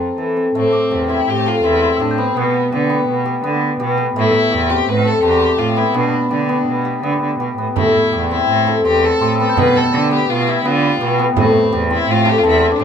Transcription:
Already playing: F2 C4 G4 A4 A#4
0.18 E3 A4
0.37 C4
0.55 A2 A3 C4
0.73 D6
0.91 E2 G4
1.10 C4 E4
1.27 A2 G4
1.46 F4 A4
1.64 E2 C4 E4
1.82 C6
1.97 A2 G4 E6
2.01 D4
2.11 G6
2.18 B3 C4
2.36 B2 B3
2.72 D3 B3 G4
2.90 B3
3.08 B2
3.25 G4
3.44 D3 B3
3.80 B2 G4
3.98 B3
4.16 A2 A3 E4
4.51 E2 G4
4.70 C4 G4
4.88 A2 B4
5.05 A4
5.22 E2 C4 G4 A5
5.38 C6
5.52 D6
5.59 A2 F4 G4
5.77 B3 E4
5.94 B2 B3 D4
6.31 D3 D4 G4
6.49 B3
6.67 B2
6.85 G4
7.03 D3 B3
7.22 D3
7.39 B2 G4
7.57 A2 B3
7.76 A2 A3 E4, frame drum
8.13 E2 G4
8.31 C4 E4
8.49 A2
8.67 A4, frame drum
8.85 E2 C4 G4
9.05 A4
9.21 A2 G4 C6
9.35 E6
9.40 B3 A4
9.49 G6
9.57 B2 B3 B4, frame drum
9.76 A4
9.93 D3 G4
10.11 B3 G4
10.29 B2 F4
10.47 E4 G4
10.65 D3 B3 F4
11.01 B2 G4
11.19 B3
11.36 A2 A3 C4, frame drum
11.72 E2 G4
11.91 C4 E4
12.08 A2 F4
12.26 G4 A4, frame drum
12.38 F4
12.43 E2 C4 E4 A5
12.59 C6
12.72 D4 D6
12.79 A2 G4

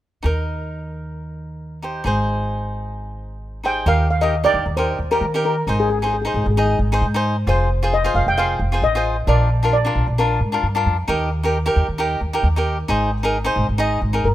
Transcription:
0.23 D#2 D#4 A#4
1.82 D#4 G4 C5
2.04 G#1 D#4 G#4 C5
3.64 D#4 G#4 C5 G5
3.86 D#2 D#4 G4 A#4 F5
4.10 F5
4.21 D#4 G4 A#4 D#5
4.44 D#4 G4 A#4 D5
4.54 D#2
4.66 D#2
4.77 D#4 G4 A#4 C5
4.99 D#2
5.11 D#4 G4 A#4
5.21 D#3
5.34 D#4 G4 A#4
5.45 A#4
5.67 G#1 D#4 G#4 C5
5.80 G#4
5.90 G#4
5.99 D#4 G#4
6.04 G#4 C5
6.14 G#4
6.22 D#4 G#4
6.27 G#4 C5
6.34 G#1 G#4
6.44 G#1 G#4
6.51 G#4
6.57 D#4 G#4 D#5
6.65 G#4
6.79 G#1
6.92 D#4 G#4 C5
7.02 G#2
7.14 D#4 G#4 C5
7.47 F1 F4 G#4 C5
7.83 F4 G#4 C5
7.94 D#5
8.04 F4 G#4 C5
8.14 F1 F5
8.27 F1 G5
8.38 F4 G#4 C5 F5
8.59 F1
8.72 F4 G#4 C5
8.82 A1 D#5
8.95 F4 G#4 C5
9.27 A#1 D4 F4 A#4 D5
9.63 D4 F4 A#4
9.73 D5
9.85 D4 F4 A#4
9.95 A#1
10.07 A#1
10.18 D4 F4 A#4
10.41 G#2
10.52 D4 F4 A#4
10.63 G2
10.75 D4 F4 A#4
10.86 F2
11.08 D#2 D#4 G4 A#4
11.43 D#4 G4 A#4
11.66 D#4 G4 A#4
11.76 D#2
11.88 D#2
11.98 D#4 G4 A#4
12.21 D#2
12.33 D#4 G4 A#4
12.43 D#2
12.56 D#4 G4 A#4
12.88 G#1 D#4 G#4 C5
13.23 D#4 G#4 A#4
13.44 D#4 G#4 C5
13.56 G#1
13.69 G#1
13.78 D#4 G#4 D#5
14.02 G#1
14.13 D#4 G#4 A#4
14.24 G1 A#4

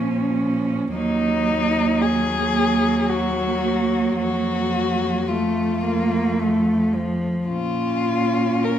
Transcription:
Already playing: A#2 F3 C#4
0.95 D#2 F#3 A#3 D#4
2.02 G#4
3.09 F#4
4.17 F2 F#4
5.28 A3 F4
5.84 A#3
6.39 A3
6.94 F3
7.47 A#2 C#4 F4
8.64 A#4

